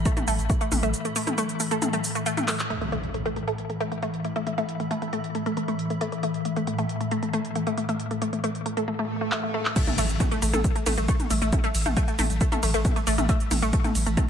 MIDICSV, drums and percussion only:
0, 0, Header, 1, 2, 480
1, 0, Start_track
1, 0, Tempo, 441176
1, 1019, Time_signature, 4, 2, 24, 8
1, 15553, End_track
2, 0, Start_track
2, 0, Title_t, "Drums"
2, 59, Note_on_c, 9, 36, 114
2, 59, Note_on_c, 9, 42, 82
2, 59, Note_on_c, 9, 82, 46
2, 168, Note_off_c, 9, 36, 0
2, 168, Note_off_c, 9, 42, 0
2, 168, Note_off_c, 9, 82, 0
2, 182, Note_on_c, 9, 42, 54
2, 182, Note_on_c, 9, 47, 70
2, 182, Note_on_c, 9, 82, 23
2, 291, Note_off_c, 9, 42, 0
2, 291, Note_off_c, 9, 47, 0
2, 291, Note_off_c, 9, 82, 0
2, 300, Note_on_c, 9, 46, 96
2, 300, Note_on_c, 9, 82, 75
2, 409, Note_off_c, 9, 46, 0
2, 409, Note_off_c, 9, 82, 0
2, 422, Note_on_c, 9, 42, 50
2, 422, Note_on_c, 9, 82, 32
2, 531, Note_off_c, 9, 42, 0
2, 531, Note_off_c, 9, 82, 0
2, 540, Note_on_c, 9, 36, 115
2, 540, Note_on_c, 9, 42, 77
2, 540, Note_on_c, 9, 82, 45
2, 648, Note_off_c, 9, 36, 0
2, 649, Note_off_c, 9, 42, 0
2, 649, Note_off_c, 9, 82, 0
2, 662, Note_on_c, 9, 42, 51
2, 662, Note_on_c, 9, 82, 21
2, 771, Note_off_c, 9, 42, 0
2, 771, Note_off_c, 9, 82, 0
2, 780, Note_on_c, 9, 46, 101
2, 780, Note_on_c, 9, 47, 72
2, 780, Note_on_c, 9, 82, 78
2, 889, Note_off_c, 9, 46, 0
2, 889, Note_off_c, 9, 47, 0
2, 889, Note_off_c, 9, 82, 0
2, 902, Note_on_c, 9, 42, 56
2, 902, Note_on_c, 9, 82, 35
2, 1011, Note_off_c, 9, 42, 0
2, 1011, Note_off_c, 9, 82, 0
2, 1020, Note_on_c, 9, 42, 80
2, 1020, Note_on_c, 9, 82, 46
2, 1128, Note_off_c, 9, 42, 0
2, 1128, Note_off_c, 9, 82, 0
2, 1142, Note_on_c, 9, 42, 50
2, 1142, Note_on_c, 9, 82, 22
2, 1251, Note_off_c, 9, 42, 0
2, 1251, Note_off_c, 9, 82, 0
2, 1260, Note_on_c, 9, 46, 100
2, 1260, Note_on_c, 9, 82, 80
2, 1369, Note_off_c, 9, 46, 0
2, 1369, Note_off_c, 9, 82, 0
2, 1382, Note_on_c, 9, 42, 54
2, 1382, Note_on_c, 9, 47, 65
2, 1382, Note_on_c, 9, 82, 33
2, 1491, Note_off_c, 9, 42, 0
2, 1491, Note_off_c, 9, 47, 0
2, 1491, Note_off_c, 9, 82, 0
2, 1500, Note_on_c, 9, 42, 86
2, 1500, Note_on_c, 9, 82, 43
2, 1609, Note_off_c, 9, 42, 0
2, 1609, Note_off_c, 9, 82, 0
2, 1622, Note_on_c, 9, 42, 56
2, 1622, Note_on_c, 9, 82, 21
2, 1731, Note_off_c, 9, 42, 0
2, 1731, Note_off_c, 9, 82, 0
2, 1740, Note_on_c, 9, 46, 104
2, 1740, Note_on_c, 9, 82, 78
2, 1849, Note_off_c, 9, 46, 0
2, 1849, Note_off_c, 9, 82, 0
2, 1862, Note_on_c, 9, 42, 59
2, 1862, Note_on_c, 9, 82, 35
2, 1971, Note_off_c, 9, 42, 0
2, 1971, Note_off_c, 9, 82, 0
2, 1980, Note_on_c, 9, 42, 84
2, 1980, Note_on_c, 9, 47, 68
2, 1980, Note_on_c, 9, 82, 45
2, 2089, Note_off_c, 9, 42, 0
2, 2089, Note_off_c, 9, 47, 0
2, 2089, Note_off_c, 9, 82, 0
2, 2102, Note_on_c, 9, 42, 57
2, 2102, Note_on_c, 9, 82, 23
2, 2211, Note_off_c, 9, 42, 0
2, 2211, Note_off_c, 9, 82, 0
2, 2220, Note_on_c, 9, 46, 93
2, 2220, Note_on_c, 9, 82, 73
2, 2329, Note_off_c, 9, 46, 0
2, 2329, Note_off_c, 9, 82, 0
2, 2342, Note_on_c, 9, 42, 50
2, 2342, Note_on_c, 9, 82, 33
2, 2451, Note_off_c, 9, 42, 0
2, 2451, Note_off_c, 9, 82, 0
2, 2460, Note_on_c, 9, 42, 82
2, 2460, Note_on_c, 9, 82, 46
2, 2569, Note_off_c, 9, 42, 0
2, 2569, Note_off_c, 9, 82, 0
2, 2582, Note_on_c, 9, 42, 53
2, 2582, Note_on_c, 9, 47, 65
2, 2582, Note_on_c, 9, 82, 22
2, 2691, Note_off_c, 9, 42, 0
2, 2691, Note_off_c, 9, 47, 0
2, 2691, Note_off_c, 9, 82, 0
2, 2699, Note_on_c, 9, 39, 86
2, 2699, Note_on_c, 9, 46, 106
2, 2699, Note_on_c, 9, 82, 78
2, 2808, Note_off_c, 9, 39, 0
2, 2808, Note_off_c, 9, 46, 0
2, 2808, Note_off_c, 9, 82, 0
2, 2822, Note_on_c, 9, 39, 104
2, 2822, Note_on_c, 9, 42, 52
2, 2822, Note_on_c, 9, 82, 34
2, 2931, Note_off_c, 9, 39, 0
2, 2931, Note_off_c, 9, 42, 0
2, 2931, Note_off_c, 9, 82, 0
2, 2940, Note_on_c, 9, 42, 78
2, 3048, Note_off_c, 9, 42, 0
2, 3062, Note_on_c, 9, 42, 54
2, 3171, Note_off_c, 9, 42, 0
2, 3179, Note_on_c, 9, 42, 77
2, 3288, Note_off_c, 9, 42, 0
2, 3301, Note_on_c, 9, 42, 52
2, 3410, Note_off_c, 9, 42, 0
2, 3419, Note_on_c, 9, 42, 79
2, 3528, Note_off_c, 9, 42, 0
2, 3542, Note_on_c, 9, 42, 53
2, 3651, Note_off_c, 9, 42, 0
2, 3659, Note_on_c, 9, 42, 78
2, 3768, Note_off_c, 9, 42, 0
2, 3782, Note_on_c, 9, 42, 53
2, 3890, Note_off_c, 9, 42, 0
2, 3899, Note_on_c, 9, 42, 83
2, 4008, Note_off_c, 9, 42, 0
2, 4021, Note_on_c, 9, 42, 55
2, 4130, Note_off_c, 9, 42, 0
2, 4139, Note_on_c, 9, 42, 78
2, 4248, Note_off_c, 9, 42, 0
2, 4262, Note_on_c, 9, 42, 50
2, 4370, Note_off_c, 9, 42, 0
2, 4379, Note_on_c, 9, 42, 78
2, 4488, Note_off_c, 9, 42, 0
2, 4501, Note_on_c, 9, 42, 54
2, 4610, Note_off_c, 9, 42, 0
2, 4619, Note_on_c, 9, 42, 81
2, 4728, Note_off_c, 9, 42, 0
2, 4741, Note_on_c, 9, 42, 53
2, 4850, Note_off_c, 9, 42, 0
2, 4859, Note_on_c, 9, 42, 83
2, 4968, Note_off_c, 9, 42, 0
2, 4982, Note_on_c, 9, 42, 50
2, 5091, Note_off_c, 9, 42, 0
2, 5099, Note_on_c, 9, 42, 82
2, 5208, Note_off_c, 9, 42, 0
2, 5221, Note_on_c, 9, 42, 55
2, 5330, Note_off_c, 9, 42, 0
2, 5339, Note_on_c, 9, 42, 82
2, 5448, Note_off_c, 9, 42, 0
2, 5461, Note_on_c, 9, 42, 54
2, 5570, Note_off_c, 9, 42, 0
2, 5579, Note_on_c, 9, 42, 81
2, 5688, Note_off_c, 9, 42, 0
2, 5702, Note_on_c, 9, 42, 55
2, 5810, Note_off_c, 9, 42, 0
2, 5819, Note_on_c, 9, 42, 83
2, 5928, Note_off_c, 9, 42, 0
2, 5942, Note_on_c, 9, 42, 55
2, 6050, Note_off_c, 9, 42, 0
2, 6059, Note_on_c, 9, 42, 75
2, 6168, Note_off_c, 9, 42, 0
2, 6182, Note_on_c, 9, 42, 49
2, 6291, Note_off_c, 9, 42, 0
2, 6300, Note_on_c, 9, 42, 86
2, 6408, Note_off_c, 9, 42, 0
2, 6421, Note_on_c, 9, 42, 52
2, 6530, Note_off_c, 9, 42, 0
2, 6539, Note_on_c, 9, 42, 86
2, 6648, Note_off_c, 9, 42, 0
2, 6662, Note_on_c, 9, 42, 53
2, 6770, Note_off_c, 9, 42, 0
2, 6779, Note_on_c, 9, 42, 81
2, 6888, Note_off_c, 9, 42, 0
2, 6901, Note_on_c, 9, 42, 52
2, 7010, Note_off_c, 9, 42, 0
2, 7019, Note_on_c, 9, 42, 80
2, 7128, Note_off_c, 9, 42, 0
2, 7141, Note_on_c, 9, 42, 52
2, 7250, Note_off_c, 9, 42, 0
2, 7259, Note_on_c, 9, 42, 79
2, 7368, Note_off_c, 9, 42, 0
2, 7382, Note_on_c, 9, 42, 51
2, 7491, Note_off_c, 9, 42, 0
2, 7500, Note_on_c, 9, 42, 82
2, 7608, Note_off_c, 9, 42, 0
2, 7622, Note_on_c, 9, 42, 55
2, 7731, Note_off_c, 9, 42, 0
2, 7739, Note_on_c, 9, 42, 82
2, 7848, Note_off_c, 9, 42, 0
2, 7862, Note_on_c, 9, 42, 57
2, 7970, Note_off_c, 9, 42, 0
2, 7979, Note_on_c, 9, 42, 75
2, 8088, Note_off_c, 9, 42, 0
2, 8102, Note_on_c, 9, 42, 51
2, 8211, Note_off_c, 9, 42, 0
2, 8219, Note_on_c, 9, 42, 78
2, 8328, Note_off_c, 9, 42, 0
2, 8342, Note_on_c, 9, 42, 54
2, 8451, Note_off_c, 9, 42, 0
2, 8459, Note_on_c, 9, 42, 78
2, 8568, Note_off_c, 9, 42, 0
2, 8581, Note_on_c, 9, 42, 55
2, 8690, Note_off_c, 9, 42, 0
2, 8699, Note_on_c, 9, 42, 76
2, 8808, Note_off_c, 9, 42, 0
2, 8822, Note_on_c, 9, 42, 49
2, 8931, Note_off_c, 9, 42, 0
2, 8939, Note_on_c, 9, 42, 77
2, 9048, Note_off_c, 9, 42, 0
2, 9062, Note_on_c, 9, 42, 50
2, 9171, Note_off_c, 9, 42, 0
2, 9180, Note_on_c, 9, 42, 77
2, 9289, Note_off_c, 9, 42, 0
2, 9302, Note_on_c, 9, 42, 51
2, 9411, Note_off_c, 9, 42, 0
2, 9420, Note_on_c, 9, 42, 72
2, 9528, Note_off_c, 9, 42, 0
2, 9542, Note_on_c, 9, 42, 51
2, 9651, Note_off_c, 9, 42, 0
2, 10139, Note_on_c, 9, 39, 110
2, 10248, Note_off_c, 9, 39, 0
2, 10502, Note_on_c, 9, 39, 81
2, 10611, Note_off_c, 9, 39, 0
2, 10620, Note_on_c, 9, 36, 122
2, 10620, Note_on_c, 9, 42, 90
2, 10620, Note_on_c, 9, 49, 111
2, 10620, Note_on_c, 9, 82, 46
2, 10728, Note_off_c, 9, 36, 0
2, 10728, Note_off_c, 9, 42, 0
2, 10728, Note_off_c, 9, 49, 0
2, 10728, Note_off_c, 9, 82, 0
2, 10742, Note_on_c, 9, 42, 53
2, 10742, Note_on_c, 9, 47, 61
2, 10742, Note_on_c, 9, 82, 20
2, 10851, Note_off_c, 9, 42, 0
2, 10851, Note_off_c, 9, 47, 0
2, 10851, Note_off_c, 9, 82, 0
2, 10859, Note_on_c, 9, 46, 110
2, 10859, Note_on_c, 9, 51, 84
2, 10859, Note_on_c, 9, 82, 77
2, 10968, Note_off_c, 9, 46, 0
2, 10968, Note_off_c, 9, 51, 0
2, 10968, Note_off_c, 9, 82, 0
2, 10982, Note_on_c, 9, 42, 57
2, 10982, Note_on_c, 9, 82, 31
2, 11091, Note_off_c, 9, 42, 0
2, 11091, Note_off_c, 9, 82, 0
2, 11100, Note_on_c, 9, 36, 111
2, 11100, Note_on_c, 9, 42, 87
2, 11100, Note_on_c, 9, 47, 66
2, 11100, Note_on_c, 9, 82, 44
2, 11208, Note_off_c, 9, 36, 0
2, 11209, Note_off_c, 9, 42, 0
2, 11209, Note_off_c, 9, 47, 0
2, 11209, Note_off_c, 9, 82, 0
2, 11222, Note_on_c, 9, 42, 53
2, 11222, Note_on_c, 9, 82, 21
2, 11331, Note_off_c, 9, 42, 0
2, 11331, Note_off_c, 9, 82, 0
2, 11340, Note_on_c, 9, 46, 108
2, 11340, Note_on_c, 9, 51, 83
2, 11340, Note_on_c, 9, 82, 77
2, 11448, Note_off_c, 9, 46, 0
2, 11448, Note_off_c, 9, 51, 0
2, 11448, Note_off_c, 9, 82, 0
2, 11462, Note_on_c, 9, 42, 58
2, 11462, Note_on_c, 9, 47, 65
2, 11462, Note_on_c, 9, 82, 34
2, 11571, Note_off_c, 9, 42, 0
2, 11571, Note_off_c, 9, 47, 0
2, 11571, Note_off_c, 9, 82, 0
2, 11579, Note_on_c, 9, 36, 118
2, 11580, Note_on_c, 9, 42, 88
2, 11580, Note_on_c, 9, 82, 45
2, 11688, Note_off_c, 9, 36, 0
2, 11689, Note_off_c, 9, 42, 0
2, 11689, Note_off_c, 9, 82, 0
2, 11702, Note_on_c, 9, 42, 59
2, 11702, Note_on_c, 9, 82, 23
2, 11811, Note_off_c, 9, 42, 0
2, 11811, Note_off_c, 9, 82, 0
2, 11820, Note_on_c, 9, 46, 103
2, 11820, Note_on_c, 9, 47, 62
2, 11820, Note_on_c, 9, 51, 78
2, 11820, Note_on_c, 9, 82, 76
2, 11928, Note_off_c, 9, 46, 0
2, 11928, Note_off_c, 9, 47, 0
2, 11928, Note_off_c, 9, 51, 0
2, 11928, Note_off_c, 9, 82, 0
2, 11942, Note_on_c, 9, 42, 55
2, 11942, Note_on_c, 9, 82, 31
2, 12051, Note_off_c, 9, 42, 0
2, 12051, Note_off_c, 9, 82, 0
2, 12060, Note_on_c, 9, 36, 113
2, 12060, Note_on_c, 9, 42, 83
2, 12060, Note_on_c, 9, 82, 44
2, 12168, Note_off_c, 9, 36, 0
2, 12169, Note_off_c, 9, 42, 0
2, 12169, Note_off_c, 9, 82, 0
2, 12182, Note_on_c, 9, 42, 54
2, 12182, Note_on_c, 9, 47, 61
2, 12182, Note_on_c, 9, 82, 22
2, 12291, Note_off_c, 9, 42, 0
2, 12291, Note_off_c, 9, 47, 0
2, 12291, Note_off_c, 9, 82, 0
2, 12300, Note_on_c, 9, 46, 108
2, 12300, Note_on_c, 9, 51, 85
2, 12300, Note_on_c, 9, 82, 76
2, 12408, Note_off_c, 9, 46, 0
2, 12408, Note_off_c, 9, 51, 0
2, 12408, Note_off_c, 9, 82, 0
2, 12422, Note_on_c, 9, 42, 59
2, 12422, Note_on_c, 9, 82, 31
2, 12531, Note_off_c, 9, 42, 0
2, 12531, Note_off_c, 9, 82, 0
2, 12539, Note_on_c, 9, 42, 89
2, 12539, Note_on_c, 9, 47, 66
2, 12539, Note_on_c, 9, 82, 41
2, 12540, Note_on_c, 9, 36, 127
2, 12648, Note_off_c, 9, 36, 0
2, 12648, Note_off_c, 9, 42, 0
2, 12648, Note_off_c, 9, 47, 0
2, 12648, Note_off_c, 9, 82, 0
2, 12662, Note_on_c, 9, 42, 58
2, 12662, Note_on_c, 9, 82, 20
2, 12770, Note_off_c, 9, 42, 0
2, 12770, Note_off_c, 9, 82, 0
2, 12780, Note_on_c, 9, 46, 108
2, 12780, Note_on_c, 9, 51, 81
2, 12780, Note_on_c, 9, 82, 72
2, 12888, Note_off_c, 9, 46, 0
2, 12888, Note_off_c, 9, 51, 0
2, 12888, Note_off_c, 9, 82, 0
2, 12902, Note_on_c, 9, 42, 57
2, 12902, Note_on_c, 9, 47, 65
2, 12902, Note_on_c, 9, 82, 32
2, 13011, Note_off_c, 9, 42, 0
2, 13011, Note_off_c, 9, 47, 0
2, 13011, Note_off_c, 9, 82, 0
2, 13019, Note_on_c, 9, 42, 85
2, 13019, Note_on_c, 9, 82, 41
2, 13020, Note_on_c, 9, 36, 121
2, 13128, Note_off_c, 9, 36, 0
2, 13128, Note_off_c, 9, 42, 0
2, 13128, Note_off_c, 9, 82, 0
2, 13142, Note_on_c, 9, 42, 57
2, 13142, Note_on_c, 9, 82, 20
2, 13251, Note_off_c, 9, 42, 0
2, 13251, Note_off_c, 9, 82, 0
2, 13260, Note_on_c, 9, 46, 112
2, 13260, Note_on_c, 9, 47, 65
2, 13260, Note_on_c, 9, 51, 82
2, 13260, Note_on_c, 9, 82, 76
2, 13368, Note_off_c, 9, 46, 0
2, 13368, Note_off_c, 9, 47, 0
2, 13368, Note_off_c, 9, 51, 0
2, 13368, Note_off_c, 9, 82, 0
2, 13382, Note_on_c, 9, 42, 60
2, 13382, Note_on_c, 9, 82, 32
2, 13491, Note_off_c, 9, 42, 0
2, 13491, Note_off_c, 9, 82, 0
2, 13499, Note_on_c, 9, 36, 120
2, 13499, Note_on_c, 9, 42, 86
2, 13499, Note_on_c, 9, 82, 44
2, 13608, Note_off_c, 9, 36, 0
2, 13608, Note_off_c, 9, 42, 0
2, 13608, Note_off_c, 9, 82, 0
2, 13622, Note_on_c, 9, 42, 60
2, 13622, Note_on_c, 9, 47, 65
2, 13622, Note_on_c, 9, 82, 21
2, 13731, Note_off_c, 9, 42, 0
2, 13731, Note_off_c, 9, 47, 0
2, 13731, Note_off_c, 9, 82, 0
2, 13740, Note_on_c, 9, 46, 107
2, 13740, Note_on_c, 9, 51, 81
2, 13740, Note_on_c, 9, 82, 67
2, 13849, Note_off_c, 9, 46, 0
2, 13849, Note_off_c, 9, 51, 0
2, 13849, Note_off_c, 9, 82, 0
2, 13862, Note_on_c, 9, 42, 57
2, 13862, Note_on_c, 9, 82, 30
2, 13971, Note_off_c, 9, 42, 0
2, 13971, Note_off_c, 9, 82, 0
2, 13980, Note_on_c, 9, 36, 127
2, 13980, Note_on_c, 9, 42, 83
2, 13980, Note_on_c, 9, 47, 64
2, 13980, Note_on_c, 9, 82, 42
2, 14088, Note_off_c, 9, 36, 0
2, 14088, Note_off_c, 9, 42, 0
2, 14088, Note_off_c, 9, 47, 0
2, 14088, Note_off_c, 9, 82, 0
2, 14102, Note_on_c, 9, 42, 57
2, 14102, Note_on_c, 9, 82, 20
2, 14211, Note_off_c, 9, 42, 0
2, 14211, Note_off_c, 9, 82, 0
2, 14220, Note_on_c, 9, 46, 116
2, 14220, Note_on_c, 9, 51, 77
2, 14220, Note_on_c, 9, 82, 72
2, 14328, Note_off_c, 9, 46, 0
2, 14328, Note_off_c, 9, 51, 0
2, 14328, Note_off_c, 9, 82, 0
2, 14342, Note_on_c, 9, 42, 57
2, 14342, Note_on_c, 9, 47, 67
2, 14342, Note_on_c, 9, 82, 31
2, 14451, Note_off_c, 9, 42, 0
2, 14451, Note_off_c, 9, 47, 0
2, 14451, Note_off_c, 9, 82, 0
2, 14460, Note_on_c, 9, 36, 127
2, 14460, Note_on_c, 9, 42, 86
2, 14460, Note_on_c, 9, 82, 43
2, 14568, Note_off_c, 9, 36, 0
2, 14568, Note_off_c, 9, 42, 0
2, 14568, Note_off_c, 9, 82, 0
2, 14582, Note_on_c, 9, 42, 57
2, 14582, Note_on_c, 9, 82, 20
2, 14691, Note_off_c, 9, 42, 0
2, 14691, Note_off_c, 9, 82, 0
2, 14699, Note_on_c, 9, 46, 113
2, 14699, Note_on_c, 9, 47, 64
2, 14699, Note_on_c, 9, 51, 77
2, 14699, Note_on_c, 9, 82, 73
2, 14808, Note_off_c, 9, 46, 0
2, 14808, Note_off_c, 9, 47, 0
2, 14808, Note_off_c, 9, 51, 0
2, 14808, Note_off_c, 9, 82, 0
2, 14822, Note_on_c, 9, 42, 55
2, 14822, Note_on_c, 9, 82, 31
2, 14931, Note_off_c, 9, 42, 0
2, 14931, Note_off_c, 9, 82, 0
2, 14940, Note_on_c, 9, 36, 122
2, 14940, Note_on_c, 9, 42, 86
2, 14940, Note_on_c, 9, 82, 41
2, 15048, Note_off_c, 9, 36, 0
2, 15048, Note_off_c, 9, 42, 0
2, 15048, Note_off_c, 9, 82, 0
2, 15062, Note_on_c, 9, 42, 54
2, 15062, Note_on_c, 9, 47, 64
2, 15062, Note_on_c, 9, 82, 19
2, 15171, Note_off_c, 9, 42, 0
2, 15171, Note_off_c, 9, 47, 0
2, 15171, Note_off_c, 9, 82, 0
2, 15179, Note_on_c, 9, 46, 114
2, 15179, Note_on_c, 9, 51, 77
2, 15179, Note_on_c, 9, 82, 73
2, 15288, Note_off_c, 9, 46, 0
2, 15288, Note_off_c, 9, 51, 0
2, 15288, Note_off_c, 9, 82, 0
2, 15302, Note_on_c, 9, 42, 58
2, 15302, Note_on_c, 9, 82, 32
2, 15411, Note_off_c, 9, 42, 0
2, 15411, Note_off_c, 9, 82, 0
2, 15420, Note_on_c, 9, 36, 124
2, 15420, Note_on_c, 9, 42, 84
2, 15420, Note_on_c, 9, 47, 68
2, 15420, Note_on_c, 9, 82, 41
2, 15528, Note_off_c, 9, 36, 0
2, 15529, Note_off_c, 9, 42, 0
2, 15529, Note_off_c, 9, 47, 0
2, 15529, Note_off_c, 9, 82, 0
2, 15553, End_track
0, 0, End_of_file